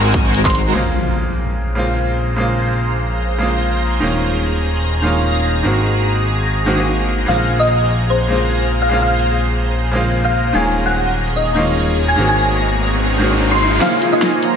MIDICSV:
0, 0, Header, 1, 9, 480
1, 0, Start_track
1, 0, Key_signature, -5, "minor"
1, 0, Tempo, 408163
1, 884, Time_signature, 4, 2, 24, 8
1, 17128, End_track
2, 0, Start_track
2, 0, Title_t, "Synth pluck"
2, 0, Program_c, 0, 84
2, 530, Note_on_c, 0, 84, 94
2, 531, Note_on_c, 0, 72, 78
2, 829, Note_off_c, 0, 72, 0
2, 829, Note_off_c, 0, 84, 0
2, 8565, Note_on_c, 0, 77, 94
2, 8869, Note_off_c, 0, 77, 0
2, 8931, Note_on_c, 0, 75, 93
2, 9229, Note_off_c, 0, 75, 0
2, 9525, Note_on_c, 0, 72, 93
2, 9829, Note_off_c, 0, 72, 0
2, 10370, Note_on_c, 0, 77, 89
2, 10569, Note_off_c, 0, 77, 0
2, 10610, Note_on_c, 0, 77, 94
2, 10908, Note_off_c, 0, 77, 0
2, 12049, Note_on_c, 0, 77, 97
2, 12348, Note_off_c, 0, 77, 0
2, 12404, Note_on_c, 0, 80, 96
2, 12708, Note_off_c, 0, 80, 0
2, 12769, Note_on_c, 0, 78, 94
2, 13068, Note_off_c, 0, 78, 0
2, 13364, Note_on_c, 0, 75, 91
2, 13668, Note_off_c, 0, 75, 0
2, 14211, Note_on_c, 0, 80, 92
2, 14409, Note_off_c, 0, 80, 0
2, 14451, Note_on_c, 0, 80, 94
2, 14749, Note_off_c, 0, 80, 0
2, 15891, Note_on_c, 0, 84, 94
2, 16189, Note_off_c, 0, 84, 0
2, 16247, Note_on_c, 0, 65, 74
2, 16247, Note_on_c, 0, 77, 94
2, 16550, Note_off_c, 0, 65, 0
2, 16550, Note_off_c, 0, 77, 0
2, 16612, Note_on_c, 0, 63, 78
2, 16612, Note_on_c, 0, 75, 93
2, 16909, Note_off_c, 0, 63, 0
2, 16909, Note_off_c, 0, 75, 0
2, 17128, End_track
3, 0, Start_track
3, 0, Title_t, "Ambient pad"
3, 0, Program_c, 1, 92
3, 885, Note_on_c, 1, 68, 80
3, 886, Note_on_c, 1, 72, 69
3, 886, Note_on_c, 1, 82, 85
3, 4687, Note_off_c, 1, 72, 0
3, 4724, Note_on_c, 1, 75, 74
3, 6625, Note_off_c, 1, 75, 0
3, 6645, Note_on_c, 1, 72, 71
3, 6646, Note_on_c, 1, 78, 70
3, 8546, Note_off_c, 1, 72, 0
3, 8546, Note_off_c, 1, 78, 0
3, 8565, Note_on_c, 1, 72, 74
3, 12358, Note_off_c, 1, 68, 0
3, 12358, Note_off_c, 1, 82, 0
3, 12366, Note_off_c, 1, 72, 0
3, 12404, Note_on_c, 1, 82, 91
3, 12405, Note_on_c, 1, 68, 79
3, 12405, Note_on_c, 1, 73, 76
3, 12405, Note_on_c, 1, 75, 70
3, 14305, Note_off_c, 1, 73, 0
3, 14306, Note_off_c, 1, 75, 0
3, 14324, Note_on_c, 1, 78, 76
3, 14325, Note_on_c, 1, 72, 74
3, 16206, Note_off_c, 1, 82, 0
3, 16207, Note_off_c, 1, 68, 0
3, 16225, Note_off_c, 1, 78, 0
3, 16226, Note_off_c, 1, 72, 0
3, 16246, Note_on_c, 1, 46, 80
3, 16246, Note_on_c, 1, 56, 70
3, 16246, Note_on_c, 1, 70, 72
3, 17128, Note_off_c, 1, 46, 0
3, 17128, Note_off_c, 1, 56, 0
3, 17128, Note_off_c, 1, 70, 0
3, 17128, End_track
4, 0, Start_track
4, 0, Title_t, "Analog polysynth"
4, 0, Program_c, 2, 90
4, 50, Note_on_c, 2, 56, 107
4, 50, Note_on_c, 2, 66, 99
4, 51, Note_on_c, 2, 70, 96
4, 51, Note_on_c, 2, 72, 96
4, 51, Note_on_c, 2, 80, 117
4, 377, Note_off_c, 2, 56, 0
4, 377, Note_off_c, 2, 66, 0
4, 377, Note_off_c, 2, 70, 0
4, 377, Note_off_c, 2, 72, 0
4, 377, Note_off_c, 2, 80, 0
4, 404, Note_on_c, 2, 70, 80
4, 404, Note_on_c, 2, 72, 81
4, 405, Note_on_c, 2, 56, 88
4, 405, Note_on_c, 2, 66, 82
4, 405, Note_on_c, 2, 82, 98
4, 857, Note_off_c, 2, 56, 0
4, 857, Note_off_c, 2, 66, 0
4, 857, Note_off_c, 2, 70, 0
4, 857, Note_off_c, 2, 72, 0
4, 857, Note_off_c, 2, 82, 0
4, 16245, Note_on_c, 2, 58, 90
4, 16245, Note_on_c, 2, 65, 86
4, 16245, Note_on_c, 2, 72, 86
4, 16245, Note_on_c, 2, 73, 84
4, 16245, Note_on_c, 2, 80, 106
4, 16580, Note_off_c, 2, 58, 0
4, 16580, Note_off_c, 2, 65, 0
4, 16580, Note_off_c, 2, 72, 0
4, 16580, Note_off_c, 2, 73, 0
4, 16580, Note_off_c, 2, 80, 0
4, 16610, Note_on_c, 2, 58, 89
4, 16610, Note_on_c, 2, 65, 81
4, 16610, Note_on_c, 2, 72, 81
4, 16610, Note_on_c, 2, 80, 99
4, 16611, Note_on_c, 2, 73, 78
4, 16937, Note_off_c, 2, 58, 0
4, 16937, Note_off_c, 2, 65, 0
4, 16937, Note_off_c, 2, 72, 0
4, 16937, Note_off_c, 2, 73, 0
4, 16937, Note_off_c, 2, 80, 0
4, 16965, Note_on_c, 2, 58, 91
4, 16965, Note_on_c, 2, 72, 83
4, 16965, Note_on_c, 2, 73, 83
4, 16965, Note_on_c, 2, 82, 102
4, 16966, Note_on_c, 2, 65, 83
4, 17128, Note_off_c, 2, 58, 0
4, 17128, Note_off_c, 2, 65, 0
4, 17128, Note_off_c, 2, 72, 0
4, 17128, Note_off_c, 2, 73, 0
4, 17128, Note_off_c, 2, 82, 0
4, 17128, End_track
5, 0, Start_track
5, 0, Title_t, "Grand piano"
5, 0, Program_c, 3, 0
5, 860, Note_on_c, 3, 49, 77
5, 871, Note_on_c, 3, 56, 69
5, 883, Note_on_c, 3, 58, 72
5, 895, Note_on_c, 3, 60, 70
5, 907, Note_on_c, 3, 65, 82
5, 1114, Control_c, 3, 64, 127
5, 2043, Note_off_c, 3, 49, 0
5, 2050, Note_off_c, 3, 56, 0
5, 2057, Note_off_c, 3, 58, 0
5, 2060, Note_on_c, 3, 49, 75
5, 2062, Note_off_c, 3, 60, 0
5, 2068, Note_off_c, 3, 65, 0
5, 2072, Note_on_c, 3, 56, 71
5, 2083, Note_on_c, 3, 58, 67
5, 2096, Note_on_c, 3, 60, 70
5, 2107, Note_on_c, 3, 65, 84
5, 2761, Note_off_c, 3, 49, 0
5, 2771, Note_off_c, 3, 56, 0
5, 2776, Note_off_c, 3, 58, 0
5, 2779, Note_on_c, 3, 49, 80
5, 2783, Note_off_c, 3, 60, 0
5, 2788, Note_off_c, 3, 65, 0
5, 2790, Note_on_c, 3, 56, 71
5, 2802, Note_on_c, 3, 58, 69
5, 2813, Note_on_c, 3, 60, 70
5, 2826, Note_on_c, 3, 65, 85
5, 3963, Note_off_c, 3, 49, 0
5, 3970, Note_off_c, 3, 56, 0
5, 3976, Note_off_c, 3, 58, 0
5, 3981, Note_on_c, 3, 49, 76
5, 3982, Note_off_c, 3, 60, 0
5, 3988, Note_off_c, 3, 65, 0
5, 3992, Note_on_c, 3, 56, 73
5, 4004, Note_on_c, 3, 58, 71
5, 4016, Note_on_c, 3, 60, 67
5, 4028, Note_on_c, 3, 65, 82
5, 4685, Note_off_c, 3, 49, 0
5, 4691, Note_off_c, 3, 56, 0
5, 4697, Note_off_c, 3, 58, 0
5, 4701, Note_on_c, 3, 51, 80
5, 4703, Note_off_c, 3, 60, 0
5, 4709, Note_off_c, 3, 65, 0
5, 4712, Note_on_c, 3, 56, 72
5, 4724, Note_on_c, 3, 58, 71
5, 4736, Note_on_c, 3, 61, 71
5, 4740, Control_c, 3, 64, 0
5, 4748, Note_on_c, 3, 65, 82
5, 4968, Control_c, 3, 64, 127
5, 5884, Note_off_c, 3, 51, 0
5, 5891, Note_off_c, 3, 56, 0
5, 5897, Note_off_c, 3, 58, 0
5, 5901, Note_on_c, 3, 51, 78
5, 5903, Note_off_c, 3, 61, 0
5, 5909, Note_off_c, 3, 65, 0
5, 5913, Note_on_c, 3, 56, 69
5, 5925, Note_on_c, 3, 58, 71
5, 5936, Note_on_c, 3, 61, 71
5, 5948, Note_on_c, 3, 65, 82
5, 6604, Note_off_c, 3, 51, 0
5, 6611, Note_off_c, 3, 56, 0
5, 6617, Note_off_c, 3, 58, 0
5, 6621, Note_on_c, 3, 51, 78
5, 6623, Note_off_c, 3, 61, 0
5, 6629, Note_off_c, 3, 65, 0
5, 6633, Note_on_c, 3, 56, 72
5, 6645, Note_on_c, 3, 58, 72
5, 6657, Note_on_c, 3, 60, 70
5, 6662, Control_c, 3, 64, 0
5, 6669, Note_on_c, 3, 66, 89
5, 6875, Control_c, 3, 64, 127
5, 7805, Note_off_c, 3, 51, 0
5, 7811, Note_off_c, 3, 56, 0
5, 7817, Note_off_c, 3, 58, 0
5, 7823, Note_off_c, 3, 60, 0
5, 7829, Note_off_c, 3, 66, 0
5, 7832, Note_on_c, 3, 51, 89
5, 7839, Note_on_c, 3, 56, 80
5, 7844, Note_on_c, 3, 58, 79
5, 7850, Note_on_c, 3, 60, 79
5, 7856, Note_on_c, 3, 66, 97
5, 7929, Note_off_c, 3, 51, 0
5, 7937, Note_off_c, 3, 56, 0
5, 7940, Note_off_c, 3, 58, 0
5, 7943, Note_off_c, 3, 60, 0
5, 7946, Note_off_c, 3, 66, 0
5, 7947, Note_on_c, 3, 51, 83
5, 7959, Note_on_c, 3, 56, 71
5, 7970, Note_on_c, 3, 58, 74
5, 7982, Note_on_c, 3, 60, 75
5, 7994, Note_on_c, 3, 66, 85
5, 8525, Note_off_c, 3, 51, 0
5, 8532, Note_off_c, 3, 56, 0
5, 8537, Note_off_c, 3, 58, 0
5, 8541, Note_on_c, 3, 49, 77
5, 8543, Note_off_c, 3, 60, 0
5, 8549, Note_off_c, 3, 66, 0
5, 8553, Note_on_c, 3, 56, 75
5, 8565, Note_on_c, 3, 58, 72
5, 8576, Note_on_c, 3, 60, 71
5, 8581, Control_c, 3, 64, 0
5, 8588, Note_on_c, 3, 65, 85
5, 8770, Control_c, 3, 64, 127
5, 9722, Note_off_c, 3, 49, 0
5, 9731, Note_off_c, 3, 56, 0
5, 9737, Note_off_c, 3, 58, 0
5, 9740, Note_on_c, 3, 49, 77
5, 9743, Note_off_c, 3, 60, 0
5, 9749, Note_off_c, 3, 65, 0
5, 9751, Note_on_c, 3, 56, 72
5, 9763, Note_on_c, 3, 58, 68
5, 9775, Note_on_c, 3, 60, 70
5, 9786, Note_on_c, 3, 65, 82
5, 10441, Note_off_c, 3, 49, 0
5, 10451, Note_off_c, 3, 56, 0
5, 10457, Note_off_c, 3, 58, 0
5, 10459, Note_on_c, 3, 49, 80
5, 10462, Note_off_c, 3, 60, 0
5, 10468, Note_off_c, 3, 65, 0
5, 10471, Note_on_c, 3, 56, 71
5, 10483, Note_on_c, 3, 58, 76
5, 10495, Note_on_c, 3, 60, 73
5, 10506, Note_on_c, 3, 65, 87
5, 11642, Note_off_c, 3, 49, 0
5, 11650, Note_off_c, 3, 56, 0
5, 11656, Note_off_c, 3, 58, 0
5, 11660, Note_on_c, 3, 49, 78
5, 11662, Note_off_c, 3, 60, 0
5, 11668, Note_off_c, 3, 65, 0
5, 11672, Note_on_c, 3, 56, 72
5, 11683, Note_on_c, 3, 58, 71
5, 11695, Note_on_c, 3, 60, 71
5, 11707, Note_on_c, 3, 65, 88
5, 12365, Note_off_c, 3, 49, 0
5, 12371, Note_off_c, 3, 56, 0
5, 12377, Note_off_c, 3, 58, 0
5, 12380, Note_on_c, 3, 51, 80
5, 12382, Note_off_c, 3, 60, 0
5, 12388, Note_off_c, 3, 65, 0
5, 12391, Note_on_c, 3, 56, 76
5, 12403, Note_on_c, 3, 58, 72
5, 12414, Note_on_c, 3, 61, 72
5, 12419, Control_c, 3, 64, 0
5, 12427, Note_on_c, 3, 65, 88
5, 12611, Control_c, 3, 64, 127
5, 13563, Note_off_c, 3, 51, 0
5, 13570, Note_off_c, 3, 56, 0
5, 13576, Note_off_c, 3, 58, 0
5, 13581, Note_on_c, 3, 51, 75
5, 13582, Note_off_c, 3, 61, 0
5, 13588, Note_off_c, 3, 65, 0
5, 13592, Note_on_c, 3, 56, 73
5, 13604, Note_on_c, 3, 58, 73
5, 13616, Note_on_c, 3, 61, 71
5, 13627, Note_on_c, 3, 65, 82
5, 14282, Note_off_c, 3, 51, 0
5, 14291, Note_off_c, 3, 56, 0
5, 14297, Note_off_c, 3, 58, 0
5, 14300, Note_on_c, 3, 51, 81
5, 14303, Note_off_c, 3, 61, 0
5, 14309, Note_off_c, 3, 65, 0
5, 14311, Note_on_c, 3, 56, 72
5, 14323, Note_on_c, 3, 58, 73
5, 14335, Note_on_c, 3, 60, 73
5, 14341, Control_c, 3, 64, 0
5, 14347, Note_on_c, 3, 66, 91
5, 14535, Control_c, 3, 64, 127
5, 15483, Note_off_c, 3, 51, 0
5, 15491, Note_off_c, 3, 56, 0
5, 15497, Note_off_c, 3, 58, 0
5, 15500, Note_on_c, 3, 51, 76
5, 15502, Note_off_c, 3, 60, 0
5, 15508, Note_off_c, 3, 66, 0
5, 15511, Note_on_c, 3, 56, 70
5, 15523, Note_on_c, 3, 58, 69
5, 15536, Note_on_c, 3, 60, 68
5, 15547, Note_on_c, 3, 66, 82
5, 16205, Note_off_c, 3, 51, 0
5, 16211, Note_off_c, 3, 56, 0
5, 16217, Note_off_c, 3, 58, 0
5, 16221, Note_on_c, 3, 49, 84
5, 16223, Note_off_c, 3, 60, 0
5, 16228, Note_off_c, 3, 66, 0
5, 16232, Note_on_c, 3, 56, 73
5, 16244, Note_on_c, 3, 58, 76
5, 16256, Note_on_c, 3, 60, 74
5, 16259, Control_c, 3, 64, 0
5, 16267, Note_on_c, 3, 65, 90
5, 16463, Control_c, 3, 64, 127
5, 17128, Note_off_c, 3, 49, 0
5, 17128, Note_off_c, 3, 56, 0
5, 17128, Note_off_c, 3, 58, 0
5, 17128, Note_off_c, 3, 60, 0
5, 17128, Note_off_c, 3, 65, 0
5, 17128, End_track
6, 0, Start_track
6, 0, Title_t, "Analog synth bass"
6, 0, Program_c, 4, 38
6, 0, Note_on_c, 4, 32, 85
6, 862, Note_off_c, 4, 32, 0
6, 884, Note_on_c, 4, 34, 80
6, 4701, Note_off_c, 4, 34, 0
6, 4724, Note_on_c, 4, 27, 83
6, 6621, Note_off_c, 4, 27, 0
6, 6645, Note_on_c, 4, 32, 86
6, 8542, Note_off_c, 4, 32, 0
6, 8564, Note_on_c, 4, 34, 87
6, 12382, Note_off_c, 4, 34, 0
6, 12403, Note_on_c, 4, 27, 84
6, 14301, Note_off_c, 4, 27, 0
6, 14325, Note_on_c, 4, 32, 83
6, 16222, Note_off_c, 4, 32, 0
6, 17128, End_track
7, 0, Start_track
7, 0, Title_t, "Impact"
7, 0, Program_c, 5, 103
7, 884, Note_on_c, 5, 60, 70
7, 2804, Note_off_c, 5, 60, 0
7, 17128, End_track
8, 0, Start_track
8, 0, Title_t, "Riser"
8, 0, Program_c, 6, 103
8, 12404, Note_on_c, 6, 60, 75
8, 16244, Note_off_c, 6, 60, 0
8, 16244, Note_on_c, 6, 60, 79
8, 17128, Note_off_c, 6, 60, 0
8, 17128, End_track
9, 0, Start_track
9, 0, Title_t, "Drums"
9, 165, Note_on_c, 9, 36, 107
9, 165, Note_on_c, 9, 42, 77
9, 283, Note_off_c, 9, 36, 0
9, 283, Note_off_c, 9, 42, 0
9, 405, Note_on_c, 9, 42, 81
9, 522, Note_off_c, 9, 42, 0
9, 530, Note_on_c, 9, 36, 58
9, 530, Note_on_c, 9, 39, 37
9, 530, Note_on_c, 9, 42, 52
9, 587, Note_off_c, 9, 42, 0
9, 587, Note_on_c, 9, 42, 67
9, 645, Note_off_c, 9, 42, 0
9, 645, Note_on_c, 9, 42, 72
9, 648, Note_off_c, 9, 36, 0
9, 648, Note_off_c, 9, 39, 0
9, 762, Note_off_c, 9, 42, 0
9, 16244, Note_on_c, 9, 38, 44
9, 16244, Note_on_c, 9, 42, 79
9, 16362, Note_off_c, 9, 38, 0
9, 16362, Note_off_c, 9, 42, 0
9, 16484, Note_on_c, 9, 42, 71
9, 16602, Note_off_c, 9, 42, 0
9, 16724, Note_on_c, 9, 38, 48
9, 16724, Note_on_c, 9, 42, 82
9, 16842, Note_off_c, 9, 38, 0
9, 16842, Note_off_c, 9, 42, 0
9, 16964, Note_on_c, 9, 42, 68
9, 17081, Note_off_c, 9, 42, 0
9, 17128, End_track
0, 0, End_of_file